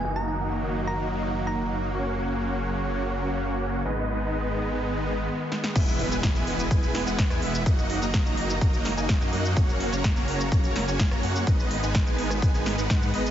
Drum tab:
CC |----------------|----------------|----------------|x---------------|
HH |----------------|----------------|----------------|x-oxxxoxxxoxxxox|
SH |----------------|----------------|----------------|xx-xxx-xxx-xxx-x|
SD |----------------|----------------|--------------oo|----o-----o-or--|
BD |----------------|----------------|----------------|o---o---o---o---|

CC |----------------|----------------|----------------|
HH |x-oxxxoxxxoxxxox|x-oxxxoxxxoxxxox|x-oxxxoxxxoxxxox|
SH |xx-xxx-xxx-xxx-x|xx-xxx-xxx-xxx-x|xx-xxx-xxx-xxx-x|
SD |----o-----o-o---|----o-----o-or--|----o--r--o-o---|
BD |o---o---o---o---|o---o---o---o---|o---o---o---o---|